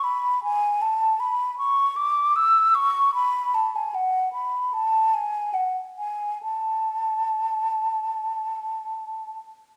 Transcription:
\new Staff \with { instrumentName = "Flute" } { \time 4/4 \key a \major \tempo 4 = 74 b''8 gis''8 a''8 b''8 cis'''8 d'''8 e'''8 cis'''8 | b''8 a''16 gis''16 fis''8 b''8 a''8 gis''8 fis''8 gis''8 | a''2.~ a''8 r8 | }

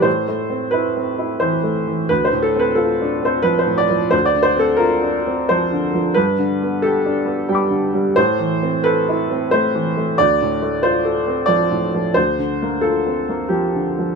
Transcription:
<<
  \new Staff \with { instrumentName = "Upright piano" } { \time 3/4 \key a \minor \tempo 4 = 89 c''4 b'4 c''4 | b'16 c''16 a'16 b'16 a'8. c''16 b'16 c''16 d''8 | c''16 d''16 c''16 a'16 bes'4 c''4 | b'4 a'4 <g'' b'' d'''>4 |
c''4 b'4 c''4 | d''4 c''4 d''4 | c''4 a'4 g'4 | }
  \new Staff \with { instrumentName = "Upright piano" } { \time 3/4 \key a \minor \tuplet 3/2 { a,8 a8 c'8 e'8 c'8 e'8 e8 a8 e8 } | \tuplet 3/2 { d,8 a,8 c'8 f'8 d'8 c'8 f8 a,8 f8 } | \tuplet 3/2 { d,8 d8 c'8 f'8 d'8 c'8 f8 d8 f8 } | \tuplet 3/2 { g,8 d8 b8 g'8 d'8 b8 g8 d8 g8 } |
\tuplet 3/2 { a,8 e8 c'8 a'8 e'8 c'8 a8 e8 a8 } | \tuplet 3/2 { d,8 a,8 a8 f'8 a'8 c'8 f8 a,8 f8 } | \tuplet 3/2 { d,8 d8 bes8 f'8 c'8 bes8 f8 d8 f8 } | }
>>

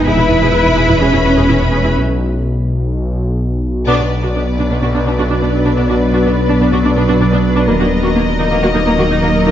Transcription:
<<
  \new Staff \with { instrumentName = "Violin section" } { \time 4/4 \key b \minor \tempo 4 = 126 <e'' b''>1 | r1 | <b' d''>1~ | <b' d''>1 |
<ais' dis''>1 | }
  \new Staff \with { instrumentName = "Viola section" } { \time 4/4 \key b \minor << { b'1 | r1 | b16 fis'16 r16 fis'16 b16 r16 d'16 b16 fis'16 d'16 b16 fis'16 d'16 b16 r16 d'16 | b16 fis'16 r16 fis'16 b16 r16 d'16 b16 fis'16 d'16 b16 fis'16 d'16 b16 r16 d'16 |
ais16 fis'16 r16 fis'16 ais16 r16 dis'16 ais16 fis'16 dis'16 ais16 fis'16 dis'16 ais16 r16 dis'16 | } \\ { gis'16 e'16 b16 gis'16 e'16 b16 gis'16 e'16 gis'16 e'16 b16 gis'16 e'16 b16 gis'16 e'16 | r1 | d'16 d'16 r16 d'16 d'16 r16 d'16 d'16 d'16 d'16 d'16 d'16 d'16 d'16 r16 d'16 | d'16 d'16 r16 d'16 d'16 r16 d'16 d'16 d'16 d'16 d'16 d'16 d'16 d'16 r16 d'16 |
ais16 ais16 r16 ais16 ais16 r16 ais16 ais16 ais16 ais16 ais16 ais16 ais16 ais16 r16 ais16 | } >> }
  \new Staff \with { instrumentName = "Ambient pad" } { \time 4/4 \key b \minor <gis b e' b'>1 | r1 | <fis b d' b'>1~ | <fis b d' b'>1 |
<fis ais dis' dis''>1 | }
  \new Staff \with { instrumentName = "Cello section" } { \clef bass \time 4/4 \key b \minor e'2 cis'2 | r1 | b,16 b,16 r16 b,16 b,16 r16 b,16 b,16 b,16 b,16 b,16 b,16 b,16 b,16 r16 b,16 | b,16 b,16 r16 b,16 b,16 r16 b,16 b,16 b,16 b,16 b,16 b,16 b,16 b,16 r16 b,16 |
dis16 dis16 r16 dis16 dis16 r16 dis16 dis16 dis16 dis16 dis16 dis16 dis16 dis16 r16 dis16 | }
  \new Staff \with { instrumentName = "Detuned saw bass" } { \clef bass \time 4/4 \key b \minor e,,1 | b,,1 | b,,1~ | b,,1 |
dis,,1 | }
  \new Staff \with { instrumentName = "Double bass section" } { \clef bass \time 4/4 \key b \minor e,,16 e,,16 e,,16 e,,16 e,,16 e,,16 e,,16 e,,16 e,,16 e,,16 e,,16 e,,16 e,,16 e,,16 e,,16 e,,16 | r1 | r1 | r1 |
r1 | }
>>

